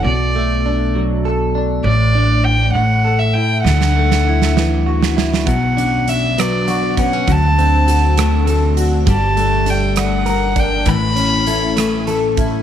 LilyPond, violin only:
\new Staff \with { instrumentName = "Violin" } { \time 6/8 \key d \major \tempo 4. = 67 d''4. r4. | d''4 g''8 fis''8. e''16 g''8 | fis''2~ fis''8 r8 | fis''4 e''8 d''4 fis''8 |
a''2 r4 | a''4 g''8 fis''4 g''8 | b''2 r4 | }